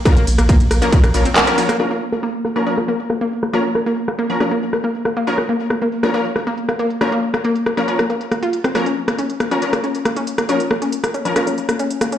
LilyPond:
<<
  \new Staff \with { instrumentName = "Synth stab" } { \time 4/4 \key bes \minor \tempo 4 = 138 <f des' bes'>16 r4. <f des' bes'>16 <f des' bes'>16 r16 <f des' bes'>16 r8 <f des' bes'>16 <f des' bes'>16 r16 | <f des' bes'>16 r4. <f des' bes'>16 <f des' bes'>16 r4. r16 | <f des' bes'>16 r4. <f des' bes'>16 <f des' bes'>16 r4. r16 | <f des' bes'>16 r4. <f des' bes'>16 <f des' bes'>16 r4. r16 |
<f des' bes'>16 r4. <f des' bes'>16 <f des' bes'>16 r4. r16 | <f des' bes'>16 r4. <f des' bes'>16 <f des' bes'>16 r4. r16 | <f des' bes'>16 r4. <f des' bes'>16 <f des' bes'>16 r4. r16 | }
  \new Staff \with { instrumentName = "Synth arpeggio sound" } { \time 4/4 \key bes \minor bes16 bes16 r16 bes16 bes16 r16 bes16 bes16 r16 bes16 bes16 c'16 bes'16 bes'16 bes16 bes16 | bes16 bes16 r16 bes16 bes16 r16 bes16 bes16 r16 bes16 bes16 r16 bes16 bes16 r16 bes16 | bes16 r16 bes16 bes16 r16 bes16 bes16 r16 bes16 bes16 r16 bes16 bes16 r16 bes16 bes16 | r16 bes16 bes16 r16 bes16 bes16 r16 bes16 bes16 r16 bes16 bes16 r16 bes16 bes16 r16 |
bes16 bes16 r16 bes16 bes16 r16 bes16 bes16 r16 bes16 bes16 r16 bes16 f'16 r16 c'16 | bes16 des'16 r16 bes16 des'16 r16 bes16 des'16 r16 bes16 des'16 r16 bes16 des'16 r16 bes16 | des'16 r16 bes16 des'16 r16 bes16 des'16 r16 bes16 des'16 r16 bes16 des'16 r16 bes16 des'16 | }
  \new Staff \with { instrumentName = "Sub bass" } { \clef bass \time 4/4 \key bes \minor r16 bes,,16 bes,,16 bes,,16 r16 bes,,16 bes,,16 r8 bes,,16 bes,,16 r4 r16 | r1 | r1 | r1 |
r1 | r1 | r1 | }
  \new DrumStaff \with { instrumentName = "Drums" } \drummode { \time 4/4 <hh bd cymr ss>16 <hh cymr>16 <hho cymr>16 <hh cymr ss>16 <hh bd cymr>16 <hh cymr>16 <hho cymr ss>16 <hh cymr>16 <hh bd cymr>16 <hh cymr ss>16 <hho cymr>16 <hh cymr>16 <hc hh cymr ss>16 <hh cymr>16 <hho cymr>16 <hh cymr ss>16 | <cymc ss>8. ss16 hh16 hh16 <hh ss>8 r16 <hh ss>16 hh16 hh16 <hh ss>16 hh16 hh16 <hh ss>16 | r8 ss16 hh16 hh16 <hh ss>16 hh16 hh16 <hh ss>16 hh16 hh16 <hh ss>16 hh16 hh16 <hh ss>16 hh16 | hh16 <hh ss>8 hh16 <hh ss>16 hh16 hh16 <hh ss>16 hh16 hh16 <hh ss>16 hh16 hh16 <hh ss>16 hh16 hh16 |
<hh ss>16 hh8 <hh ss>16 hh16 hh16 <hh ss>16 hh16 hh16 <hh ss>16 hh16 hh16 <hh ss>16 hh16 hh16 <hh ss>16 | <hh ss>16 hh8 <hh ss>16 hh16 hh16 <hh ss>16 hh16 hh16 <hh ss>16 hh16 hh16 <hh ss>16 hh16 hh16 <hh ss>16 | hh16 hh16 ss16 hh16 hh16 <hh ss>16 hh16 hh16 <hh ss>16 hh16 hh16 <hh ss>16 hh16 hh16 <hh ss>16 hh16 | }
>>